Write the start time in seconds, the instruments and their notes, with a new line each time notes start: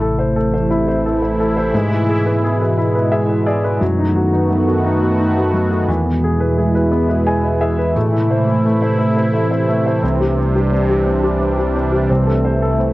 Already playing: tine electric piano A1, analog synth pad C3 E3 A3 E4, grand piano A3 E4
0.01 grand piano A4
0.19 grand piano C5
0.36 grand piano A4
0.54 grand piano C5
0.71 grand piano E4
0.88 grand piano C5
1.06 grand piano A4
1.22 grand piano C5
1.40 grand piano A4
1.57 grand piano C5
1.73 tine electric piano G#2, analog synth pad B2 G#3, grand piano G#3
1.92 grand piano E4
2.09 grand piano G#4
2.26 grand piano B4
2.44 grand piano G#4
2.61 grand piano B4
2.78 grand piano E4
2.95 grand piano B4
3.12 grand piano G#4 E5
3.29 grand piano B4
3.47 grand piano G#4 D5
3.64 grand piano B4
3.80 tine electric piano F#2, analog synth pad D#3 A3 B3 F#4, grand piano F#3
3.99 grand piano D#4
4.15 grand piano F#4
4.33 grand piano D#4
4.50 grand piano F#3
4.68 grand piano F#4
4.84 grand piano D#4
5.02 grand piano F#4
5.20 grand piano D#4
5.37 grand piano F#4
5.53 grand piano F#3
5.71 grand piano F#4
5.88 tine electric piano E2, analog synth pad B2 E3 G#3 E4, grand piano E3
6.06 grand piano B3
6.24 grand piano G#4
6.40 grand piano B4
6.58 grand piano G#4
6.75 grand piano B4
6.92 grand piano B3
7.09 grand piano B4
7.26 grand piano G#4 G#5
7.43 grand piano B4
7.61 grand piano G#4 E5
7.78 grand piano B4
7.96 tine electric piano A2, analog synth pad C3 A3 E4, grand piano A3
8.12 grand piano E4
8.30 grand piano C5
8.47 grand piano E4
8.65 grand piano A3
8.82 grand piano C5
8.98 grand piano E4
9.16 grand piano C5
9.34 grand piano E4
9.51 grand piano C5
9.68 grand piano A3
9.86 grand piano C5
10.02 tine electric piano C2, analog synth pad G3 D4, grand piano C4
10.20 grand piano G4
10.38 grand piano C4
10.56 grand piano G4
10.72 grand piano C4
10.89 grand piano G4
11.07 grand piano C4
11.24 grand piano G4
11.41 grand piano C4
11.58 grand piano G4
11.76 grand piano C4
11.92 grand piano G4
12.10 tine electric piano C2, analog synth pad A3 E4, grand piano C4
12.27 grand piano A4
12.45 grand piano C5
12.62 grand piano A4
12.79 grand piano C4